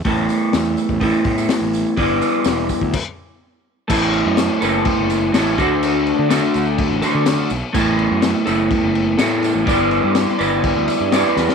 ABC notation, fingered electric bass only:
X:1
M:4/4
L:1/16
Q:1/4=125
K:G
V:1 name="Fingered electric bass" clef=bass
A,,,2 z2 E,,2 z A,,,2 z A,,2 z A,,,2 z | G,,,2 z2 E,,,2 z D,, z8 | A,,,3 F,,2 z F,,,2 z F,,,3 A,,,2 D,,2- | D,,3 D,2 z D,,3 A,,, z D,2 z B,,, z |
A,,,3 F,,2 z F,,,2 z F,,,3 A,,3 A,,, | G,,,3 G,,2 z G,,,3 D,, z G,,2 z E,, z |]